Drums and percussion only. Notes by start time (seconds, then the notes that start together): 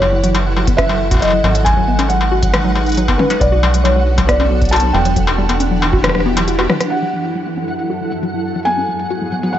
0.02 struck metal
0.24 closed hi-hat
0.35 closed hi-hat, struck metal
0.56 struck metal
0.67 kick, closed hi-hat
0.78 kick, cross-stick, closed hi-hat
0.89 struck metal
1.11 kick, closed hi-hat, struck metal
1.14 kick, struck metal
1.17 kick, struck metal
1.19 closed hi-hat, struck metal
1.22 struck metal
1.25 struck metal
1.28 struck metal
1.30 struck metal
1.44 struck metal
1.55 closed hi-hat
1.66 kick, closed hi-hat, struck metal
1.70 kick
1.73 kick
1.77 kick
1.81 kick
1.84 kick
1.99 closed hi-hat, struck metal
2.10 closed hi-hat
2.21 struck metal
2.43 kick, closed hi-hat
2.54 cross-stick, closed hi-hat, high tom, struck metal
2.75 struck metal
2.86 closed hi-hat
2.89 closed hi-hat
2.92 closed hi-hat
2.95 closed hi-hat
2.97 closed hi-hat
3.08 kick, struck metal
3.19 high tom
3.30 closed hi-hat, struck metal
3.41 kick, closed hi-hat
3.63 struck metal
3.74 closed hi-hat
3.85 closed hi-hat, struck metal
4.18 kick, closed hi-hat, struck metal
4.29 kick, cross-stick, closed hi-hat
4.40 struck metal
4.62 kick, closed hi-hat
4.65 closed hi-hat
4.69 closed hi-hat
4.73 closed hi-hat, struck metal
4.76 closed hi-hat
4.80 closed hi-hat
4.94 struck metal
5.05 closed hi-hat
5.16 kick, closed hi-hat
5.27 struck metal
5.49 closed hi-hat, struck metal
5.60 closed hi-hat
5.82 struck metal
5.93 kick
6.04 cross-stick, closed hi-hat, high tom, struck metal
6.09 cross-stick
6.15 cross-stick
6.20 cross-stick
6.37 closed hi-hat, struck metal
6.48 closed hi-hat
6.59 cross-stick, struck metal
6.70 cross-stick, high tom
6.80 cross-stick, closed hi-hat
6.91 closed hi-hat, crash
7.24 closed hi-hat
7.35 closed hi-hat
7.68 closed hi-hat
7.79 closed hi-hat
8.12 closed hi-hat
8.23 closed hi-hat
8.56 closed hi-hat
8.63 closed hi-hat
8.67 closed hi-hat
8.70 closed hi-hat
9.00 closed hi-hat
9.10 closed hi-hat
9.43 closed hi-hat
9.54 closed hi-hat